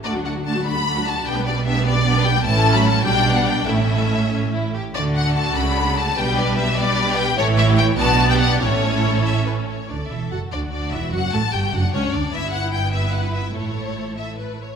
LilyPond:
<<
  \new Staff \with { instrumentName = "Violin section" } { \time 6/8 \key d \major \tempo 4. = 98 d''8 fis''8 a''8 b''4 a''8 | g''8 d''8 e''8 d''4 g''8 | a''8. b''16 a''8 g''8. fis''16 g''8 | e''2~ e''8 r8 |
d''8 fis''8 a''8 b''4 a''8 | g''8 d''8 e''8 d''4 g''8 | cis''8 e''8 g''8 a''8. g''16 fis''8 | cis''4. e''8 b'8 cis''8 |
d''8 e''8 fis''8 d''8 d''8 e''8 | fis''8 a''8 g''8 fis''8 cis''8 d''8 | e''8 fis''8 g''8 e''8 fis''8 e''8 | cis''4. e''8 b'8 cis''8 | }
  \new Staff \with { instrumentName = "Violin section" } { \time 6/8 \key d \major << { a'16 fis'16 a'16 fis'16 a'16 fis'16 a'16 fis'16 a'16 fis'16 a'16 fis'16 | g'16 b'16 g'16 b'16 g'16 b'16 g'16 b'16 g'16 b'16 g'16 b'16 | a'4. d''4. | a'4. cis'8 e'8 g'8 |
a'2. | b'4. b'4. | cis''4. d''4. | cis''2~ cis''8 r8 |
a'4. fis'4.~ | fis'4. d'4. | e'4. b'4. | a'2~ a'16 r8. | } \\ { fis'16 d'16 fis'16 d'16 fis'16 d'16 fis'16 d'16 fis'16 d'16 fis'16 d'16 | b16 d'16 b16 d'16 b16 d'16 b16 d'16 b16 d'16 b16 d'16 | e'4. d'4. | e'4. r4. |
fis'2. | g'4. g'4. | a'8. g'8. fis'8. g'8. | a'2~ a'8 r8 |
r2. | r2. | r2. | r2. | } >> }
  \new Staff \with { instrumentName = "Viola section" } { \time 6/8 \key d \major << { d'16 fis'16 d'16 fis'16 d'16 fis'16 d'16 fis'16 d'16 fis'16 d'16 fis'16 | d'16 b16 d'16 b16 d'16 b16 d'16 b16 d'16 b16 d'16 b16 | cis'4. d'4. | cis'2~ cis'8 r8 |
d'2. | d'4. d'4. | e'4. d'4. | e'2~ e'8 r8 |
d'8 e'8 fis'8 d'8 d'8 e'8 | fis'8 a'8 g'8 fis'8 cis'8 d'8 | e'2.~ | e'2~ e'8 r8 | } \\ { a16 fis16 a16 fis16 a16 fis16 a16 fis16 a16 fis16 a16 fis16 | b16 g16 b16 g16 b16 g16 b16 g16 b16 g16 b16 g16 | e8. fis8. g4. | a2~ a8 r8 |
a2. | g4. g4. | e4. b4. | cis'2~ cis'8 r8 |
r2. | r2. | b2. | a2~ a8 r8 | } >> }
  \new Staff \with { instrumentName = "Cello section" } { \clef bass \time 6/8 \key d \major d,2. | b,2. | a,4. b,4. | a,2~ a,8 r8 |
d4. cis4. | b,2. | a,4. b,4. | a,2~ a,8 r8 |
d,8 e,8 fis,8 d,8 d,8 e,8 | fis,8 a,8 g,8 fis,8 cis,8 d,8 | g,2. | a,2~ a,8 r8 | }
  \new Staff \with { instrumentName = "Double bass section" } { \clef bass \time 6/8 \key d \major d,2. | b,,2. | a,,4. b,,4. | a,,2~ a,,8 r8 |
d,4. cis,4. | b,,2. | a,,4. b,,4. | a,,2~ a,,8 r8 |
d,8 e,,8 fis,,8 d,8 d,8 e,,8 | fis,,8 a,,8 g,,8 fis,,8 cis,8 d,8 | g,,2. | a,,2~ a,,8 r8 | }
>>